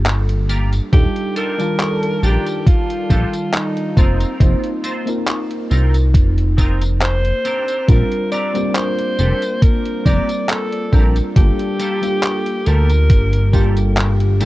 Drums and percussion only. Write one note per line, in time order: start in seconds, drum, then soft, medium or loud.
0.06 clap loud
0.06 closed hi-hat medium
0.06 tambourine soft
0.29 closed hi-hat soft
0.49 closed hi-hat medium
0.49 tambourine medium
0.73 closed hi-hat soft
0.73 tambourine soft
0.93 kick loud
0.93 closed hi-hat medium
0.93 tambourine soft
1.16 closed hi-hat soft
1.36 closed hi-hat medium
1.36 tambourine medium
1.60 closed hi-hat soft
1.60 tambourine soft
1.80 clap loud
1.80 closed hi-hat medium
1.80 tambourine soft
2.03 closed hi-hat soft
2.23 tambourine medium
2.47 closed hi-hat soft
2.47 tambourine soft
2.67 kick loud
2.67 closed hi-hat medium
2.67 tambourine soft
2.90 closed hi-hat soft
3.10 kick medium
3.10 closed hi-hat medium
3.10 tambourine medium
3.34 closed hi-hat soft
3.34 tambourine soft
3.54 clap loud
3.54 closed hi-hat medium
3.54 tambourine soft
3.77 closed hi-hat soft
3.97 kick loud
3.97 closed hi-hat medium
3.97 tambourine medium
4.20 closed hi-hat soft
4.20 tambourine soft
4.40 kick loud
4.40 closed hi-hat medium
4.40 tambourine soft
4.64 closed hi-hat soft
4.84 closed hi-hat medium
4.84 tambourine medium
5.07 closed hi-hat soft
5.07 tambourine soft
5.28 clap loud
5.28 closed hi-hat medium
5.28 tambourine soft
5.51 closed hi-hat soft
5.71 tambourine medium
5.94 closed hi-hat soft
5.94 tambourine soft
6.14 kick loud
6.14 closed hi-hat medium
6.14 tambourine soft
6.38 closed hi-hat soft
6.58 kick medium
6.58 closed hi-hat medium
6.58 tambourine medium
6.81 closed hi-hat soft
6.81 tambourine soft
7.01 clap loud
7.01 closed hi-hat medium
7.01 tambourine soft
7.25 closed hi-hat soft
7.45 closed hi-hat medium
7.45 tambourine medium
7.68 closed hi-hat soft
7.68 tambourine soft
7.88 kick loud
7.88 closed hi-hat medium
7.88 tambourine soft
8.12 closed hi-hat soft
8.32 closed hi-hat medium
8.32 tambourine medium
8.55 closed hi-hat soft
8.55 tambourine soft
8.75 clap loud
8.75 closed hi-hat medium
8.75 tambourine soft
8.99 closed hi-hat soft
9.19 tambourine medium
9.42 closed hi-hat soft
9.42 tambourine soft
9.62 kick loud
9.62 closed hi-hat medium
9.62 tambourine soft
9.86 closed hi-hat soft
10.06 kick medium
10.06 closed hi-hat medium
10.06 tambourine medium
10.29 closed hi-hat soft
10.29 tambourine soft
10.49 clap loud
10.49 closed hi-hat medium
10.49 tambourine soft
10.72 closed hi-hat soft
10.93 kick loud
10.93 closed hi-hat medium
10.93 tambourine medium
11.16 closed hi-hat soft
11.16 tambourine soft
11.36 kick loud
11.36 closed hi-hat medium
11.36 tambourine soft
11.59 closed hi-hat soft
11.80 closed hi-hat medium
11.80 tambourine medium
12.03 closed hi-hat soft
12.03 tambourine soft
12.23 clap loud
12.23 closed hi-hat medium
12.23 tambourine soft
12.46 closed hi-hat soft
12.66 closed hi-hat soft
12.66 tambourine medium
12.89 closed hi-hat soft
12.89 tambourine soft
13.10 kick loud
13.10 closed hi-hat medium
13.10 tambourine soft
13.33 closed hi-hat soft
13.53 kick medium
13.53 closed hi-hat medium
13.53 tambourine medium
13.77 closed hi-hat soft
13.77 tambourine soft
13.97 clap loud
13.97 closed hi-hat medium
13.97 tambourine soft
14.20 closed hi-hat soft
14.40 closed hi-hat medium
14.40 tambourine medium